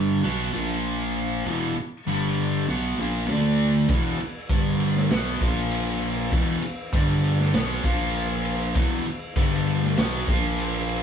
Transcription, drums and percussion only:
0, 0, Header, 1, 2, 480
1, 0, Start_track
1, 0, Tempo, 608519
1, 1145, Time_signature, 4, 2, 24, 8
1, 8699, End_track
2, 0, Start_track
2, 0, Title_t, "Drums"
2, 3068, Note_on_c, 9, 36, 100
2, 3068, Note_on_c, 9, 51, 77
2, 3146, Note_off_c, 9, 36, 0
2, 3147, Note_off_c, 9, 51, 0
2, 3310, Note_on_c, 9, 51, 53
2, 3389, Note_off_c, 9, 51, 0
2, 3545, Note_on_c, 9, 51, 69
2, 3546, Note_on_c, 9, 36, 96
2, 3624, Note_off_c, 9, 36, 0
2, 3624, Note_off_c, 9, 51, 0
2, 3786, Note_on_c, 9, 51, 58
2, 3865, Note_off_c, 9, 51, 0
2, 3913, Note_on_c, 9, 38, 26
2, 3992, Note_off_c, 9, 38, 0
2, 4027, Note_on_c, 9, 51, 72
2, 4031, Note_on_c, 9, 38, 103
2, 4106, Note_off_c, 9, 51, 0
2, 4110, Note_off_c, 9, 38, 0
2, 4266, Note_on_c, 9, 36, 85
2, 4269, Note_on_c, 9, 51, 50
2, 4345, Note_off_c, 9, 36, 0
2, 4348, Note_off_c, 9, 51, 0
2, 4508, Note_on_c, 9, 51, 78
2, 4587, Note_off_c, 9, 51, 0
2, 4749, Note_on_c, 9, 51, 62
2, 4828, Note_off_c, 9, 51, 0
2, 4985, Note_on_c, 9, 36, 93
2, 4990, Note_on_c, 9, 51, 79
2, 5064, Note_off_c, 9, 36, 0
2, 5069, Note_off_c, 9, 51, 0
2, 5225, Note_on_c, 9, 51, 62
2, 5304, Note_off_c, 9, 51, 0
2, 5464, Note_on_c, 9, 36, 98
2, 5469, Note_on_c, 9, 51, 77
2, 5543, Note_off_c, 9, 36, 0
2, 5548, Note_off_c, 9, 51, 0
2, 5707, Note_on_c, 9, 51, 59
2, 5786, Note_off_c, 9, 51, 0
2, 5828, Note_on_c, 9, 38, 28
2, 5907, Note_off_c, 9, 38, 0
2, 5946, Note_on_c, 9, 51, 79
2, 5949, Note_on_c, 9, 38, 101
2, 6024, Note_off_c, 9, 51, 0
2, 6028, Note_off_c, 9, 38, 0
2, 6183, Note_on_c, 9, 36, 88
2, 6186, Note_on_c, 9, 51, 48
2, 6262, Note_off_c, 9, 36, 0
2, 6265, Note_off_c, 9, 51, 0
2, 6421, Note_on_c, 9, 51, 63
2, 6500, Note_off_c, 9, 51, 0
2, 6664, Note_on_c, 9, 51, 54
2, 6743, Note_off_c, 9, 51, 0
2, 6904, Note_on_c, 9, 36, 101
2, 6906, Note_on_c, 9, 51, 82
2, 6983, Note_off_c, 9, 36, 0
2, 6985, Note_off_c, 9, 51, 0
2, 7143, Note_on_c, 9, 51, 56
2, 7222, Note_off_c, 9, 51, 0
2, 7382, Note_on_c, 9, 51, 77
2, 7383, Note_on_c, 9, 36, 95
2, 7460, Note_off_c, 9, 51, 0
2, 7462, Note_off_c, 9, 36, 0
2, 7627, Note_on_c, 9, 51, 52
2, 7705, Note_off_c, 9, 51, 0
2, 7755, Note_on_c, 9, 38, 32
2, 7834, Note_off_c, 9, 38, 0
2, 7865, Note_on_c, 9, 51, 82
2, 7869, Note_on_c, 9, 38, 113
2, 7944, Note_off_c, 9, 51, 0
2, 7948, Note_off_c, 9, 38, 0
2, 8106, Note_on_c, 9, 36, 92
2, 8110, Note_on_c, 9, 51, 56
2, 8185, Note_off_c, 9, 36, 0
2, 8189, Note_off_c, 9, 51, 0
2, 8348, Note_on_c, 9, 51, 77
2, 8427, Note_off_c, 9, 51, 0
2, 8587, Note_on_c, 9, 51, 56
2, 8666, Note_off_c, 9, 51, 0
2, 8699, End_track
0, 0, End_of_file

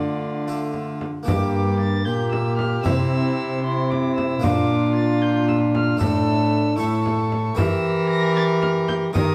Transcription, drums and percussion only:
0, 0, Header, 1, 2, 480
1, 0, Start_track
1, 0, Tempo, 525855
1, 1164, Time_signature, 6, 3, 24, 8
1, 8534, End_track
2, 0, Start_track
2, 0, Title_t, "Frame drum"
2, 672, Note_on_c, 9, 64, 42
2, 764, Note_off_c, 9, 64, 0
2, 924, Note_on_c, 9, 64, 50
2, 1015, Note_off_c, 9, 64, 0
2, 1168, Note_on_c, 9, 64, 79
2, 1259, Note_off_c, 9, 64, 0
2, 2125, Note_on_c, 9, 64, 57
2, 2217, Note_off_c, 9, 64, 0
2, 2362, Note_on_c, 9, 64, 56
2, 2454, Note_off_c, 9, 64, 0
2, 2607, Note_on_c, 9, 64, 83
2, 2698, Note_off_c, 9, 64, 0
2, 3576, Note_on_c, 9, 64, 51
2, 3668, Note_off_c, 9, 64, 0
2, 3815, Note_on_c, 9, 64, 55
2, 3906, Note_off_c, 9, 64, 0
2, 4051, Note_on_c, 9, 64, 76
2, 4143, Note_off_c, 9, 64, 0
2, 5008, Note_on_c, 9, 64, 50
2, 5099, Note_off_c, 9, 64, 0
2, 5247, Note_on_c, 9, 64, 58
2, 5338, Note_off_c, 9, 64, 0
2, 5484, Note_on_c, 9, 64, 76
2, 5576, Note_off_c, 9, 64, 0
2, 6443, Note_on_c, 9, 64, 55
2, 6535, Note_off_c, 9, 64, 0
2, 6684, Note_on_c, 9, 64, 51
2, 6775, Note_off_c, 9, 64, 0
2, 6919, Note_on_c, 9, 64, 85
2, 7011, Note_off_c, 9, 64, 0
2, 7875, Note_on_c, 9, 64, 57
2, 7966, Note_off_c, 9, 64, 0
2, 8110, Note_on_c, 9, 64, 59
2, 8202, Note_off_c, 9, 64, 0
2, 8356, Note_on_c, 9, 64, 85
2, 8447, Note_off_c, 9, 64, 0
2, 8534, End_track
0, 0, End_of_file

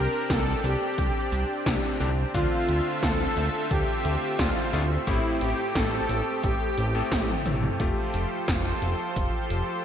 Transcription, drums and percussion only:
0, 0, Header, 1, 2, 480
1, 0, Start_track
1, 0, Key_signature, -1, "minor"
1, 0, Tempo, 681818
1, 1651, Time_signature, 4, 2, 24, 8
1, 6933, End_track
2, 0, Start_track
2, 0, Title_t, "Drums"
2, 211, Note_on_c, 9, 36, 110
2, 211, Note_on_c, 9, 38, 114
2, 211, Note_on_c, 9, 42, 91
2, 281, Note_off_c, 9, 36, 0
2, 281, Note_off_c, 9, 38, 0
2, 281, Note_off_c, 9, 42, 0
2, 451, Note_on_c, 9, 42, 62
2, 521, Note_off_c, 9, 42, 0
2, 691, Note_on_c, 9, 36, 110
2, 691, Note_on_c, 9, 42, 90
2, 761, Note_off_c, 9, 36, 0
2, 761, Note_off_c, 9, 42, 0
2, 931, Note_on_c, 9, 42, 63
2, 1001, Note_off_c, 9, 42, 0
2, 1171, Note_on_c, 9, 36, 110
2, 1171, Note_on_c, 9, 38, 118
2, 1171, Note_on_c, 9, 42, 90
2, 1241, Note_off_c, 9, 36, 0
2, 1241, Note_off_c, 9, 38, 0
2, 1241, Note_off_c, 9, 42, 0
2, 1412, Note_on_c, 9, 42, 61
2, 1482, Note_off_c, 9, 42, 0
2, 1651, Note_on_c, 9, 36, 115
2, 1651, Note_on_c, 9, 42, 89
2, 1721, Note_off_c, 9, 36, 0
2, 1721, Note_off_c, 9, 42, 0
2, 1891, Note_on_c, 9, 42, 65
2, 1961, Note_off_c, 9, 42, 0
2, 2131, Note_on_c, 9, 36, 115
2, 2131, Note_on_c, 9, 38, 111
2, 2131, Note_on_c, 9, 42, 94
2, 2201, Note_off_c, 9, 36, 0
2, 2202, Note_off_c, 9, 38, 0
2, 2202, Note_off_c, 9, 42, 0
2, 2372, Note_on_c, 9, 42, 63
2, 2442, Note_off_c, 9, 42, 0
2, 2611, Note_on_c, 9, 36, 109
2, 2611, Note_on_c, 9, 42, 91
2, 2681, Note_off_c, 9, 36, 0
2, 2682, Note_off_c, 9, 42, 0
2, 2851, Note_on_c, 9, 42, 65
2, 2921, Note_off_c, 9, 42, 0
2, 3091, Note_on_c, 9, 36, 108
2, 3091, Note_on_c, 9, 38, 118
2, 3091, Note_on_c, 9, 42, 91
2, 3161, Note_off_c, 9, 36, 0
2, 3161, Note_off_c, 9, 38, 0
2, 3161, Note_off_c, 9, 42, 0
2, 3331, Note_on_c, 9, 42, 63
2, 3401, Note_off_c, 9, 42, 0
2, 3571, Note_on_c, 9, 36, 111
2, 3571, Note_on_c, 9, 42, 89
2, 3641, Note_off_c, 9, 36, 0
2, 3641, Note_off_c, 9, 42, 0
2, 3811, Note_on_c, 9, 42, 65
2, 3881, Note_off_c, 9, 42, 0
2, 4051, Note_on_c, 9, 36, 117
2, 4051, Note_on_c, 9, 38, 115
2, 4051, Note_on_c, 9, 42, 96
2, 4121, Note_off_c, 9, 36, 0
2, 4121, Note_off_c, 9, 38, 0
2, 4121, Note_off_c, 9, 42, 0
2, 4291, Note_on_c, 9, 42, 66
2, 4361, Note_off_c, 9, 42, 0
2, 4530, Note_on_c, 9, 42, 94
2, 4531, Note_on_c, 9, 36, 112
2, 4601, Note_off_c, 9, 36, 0
2, 4601, Note_off_c, 9, 42, 0
2, 4770, Note_on_c, 9, 42, 66
2, 4841, Note_off_c, 9, 42, 0
2, 5010, Note_on_c, 9, 38, 120
2, 5010, Note_on_c, 9, 42, 95
2, 5011, Note_on_c, 9, 36, 112
2, 5080, Note_off_c, 9, 38, 0
2, 5080, Note_off_c, 9, 42, 0
2, 5081, Note_off_c, 9, 36, 0
2, 5130, Note_on_c, 9, 48, 50
2, 5200, Note_off_c, 9, 48, 0
2, 5250, Note_on_c, 9, 42, 64
2, 5250, Note_on_c, 9, 47, 74
2, 5320, Note_off_c, 9, 42, 0
2, 5320, Note_off_c, 9, 47, 0
2, 5370, Note_on_c, 9, 45, 80
2, 5440, Note_off_c, 9, 45, 0
2, 5490, Note_on_c, 9, 42, 94
2, 5491, Note_on_c, 9, 36, 112
2, 5560, Note_off_c, 9, 42, 0
2, 5561, Note_off_c, 9, 36, 0
2, 5730, Note_on_c, 9, 42, 67
2, 5801, Note_off_c, 9, 42, 0
2, 5970, Note_on_c, 9, 38, 123
2, 5970, Note_on_c, 9, 42, 97
2, 5971, Note_on_c, 9, 36, 123
2, 6041, Note_off_c, 9, 36, 0
2, 6041, Note_off_c, 9, 38, 0
2, 6041, Note_off_c, 9, 42, 0
2, 6210, Note_on_c, 9, 42, 67
2, 6281, Note_off_c, 9, 42, 0
2, 6451, Note_on_c, 9, 36, 114
2, 6451, Note_on_c, 9, 42, 97
2, 6521, Note_off_c, 9, 36, 0
2, 6521, Note_off_c, 9, 42, 0
2, 6691, Note_on_c, 9, 42, 69
2, 6761, Note_off_c, 9, 42, 0
2, 6933, End_track
0, 0, End_of_file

